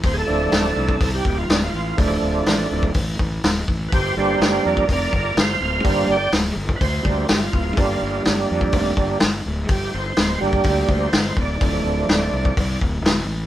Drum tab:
HH |o---o---o---o---|o---o---o---o---|o---o---o---o---|o---o---o---o---|
SD |----o-------o---|----o-------o---|----o-------o---|----o-------o---|
BD |o------oo-o-----|o------oo-o---o-|o------oo-o-----|o------oo-o---o-|

HH |o---o---o---o---|o---o---o---o---|o---o---o---o---|
SD |----o-------o---|----o-------o---|----o-------o---|
BD |o------oo-o-----|o------oo-o---o-|o------oo-o-----|